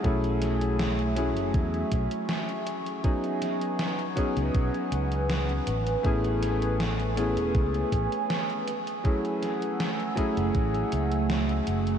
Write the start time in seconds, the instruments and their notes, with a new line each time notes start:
0.03 fingered electric bass B1, electric grand piano F#3 A3 C#4 E4 G#4, ambient pad A3 E5 G#5 C#6, kick, closed hi-hat
0.24 closed hi-hat
0.42 snare, closed hi-hat
0.61 closed hi-hat
0.79 snare, closed hi-hat
0.99 closed hi-hat
1.16 electric grand piano F#3 A3 C#4 E4 G#4, closed hi-hat
1.37 fingered electric bass F#1, closed hi-hat
1.54 fingered electric bass E2, kick, closed hi-hat
1.74 closed hi-hat
1.92 fingered electric bass B1, kick, closed hi-hat
2.11 closed hi-hat
2.29 snare, closed hi-hat
2.49 closed hi-hat
2.67 closed hi-hat
2.86 closed hi-hat
3.04 electric grand piano F#3 B3 C#4 D#4 G#4, ambient pad B4 F#5, kick, closed hi-hat
3.24 closed hi-hat
3.42 snare, closed hi-hat
3.61 closed hi-hat
3.79 snare, closed hi-hat
3.99 closed hi-hat
4.16 electric grand piano F#3 B3 C#4 D#4 G#4, kick, closed hi-hat
4.37 fingered electric bass C#2, closed hi-hat
4.54 fingered electric bass B1, kick, closed hi-hat
4.74 closed hi-hat
4.92 fingered electric bass C#2, closed hi-hat
5.12 closed hi-hat
5.30 snare, closed hi-hat
5.49 closed hi-hat
5.67 fingered electric bass A1, ambient pad C#6, closed hi-hat
5.87 closed hi-hat
6.03 fingered electric bass A1, electric grand piano A3 B3 C#4 E4 G#4, kick, closed hi-hat
6.24 closed hi-hat
6.43 snare, closed hi-hat
6.62 closed hi-hat
6.80 snare, closed hi-hat
7.00 closed hi-hat
7.16 electric grand piano A3 B3 C#4 E4 G#4, closed hi-hat
7.37 fingered electric bass E1, closed hi-hat
7.55 fingered electric bass C#2, kick, closed hi-hat
7.74 closed hi-hat
7.92 fingered electric bass A1, kick, closed hi-hat
8.12 closed hi-hat
8.30 snare, closed hi-hat
8.50 closed hi-hat
8.67 ambient pad A3 F#5 E6, closed hi-hat
8.87 closed hi-hat
9.04 electric grand piano F#3 A3 C#4 E4 G#4, kick, closed hi-hat
9.25 closed hi-hat
9.43 snare, closed hi-hat
9.62 closed hi-hat
9.80 snare, closed hi-hat
10.00 closed hi-hat
10.15 electric grand piano F#3 A3 C#4 E4 G#4, kick, closed hi-hat
10.37 fingered electric bass F#1, closed hi-hat
10.55 fingered electric bass A1, kick, closed hi-hat
10.74 closed hi-hat
10.92 fingered electric bass C#2, closed hi-hat
11.12 closed hi-hat
11.30 snare, closed hi-hat
11.49 closed hi-hat
11.67 fingered electric bass F#1, closed hi-hat
11.87 closed hi-hat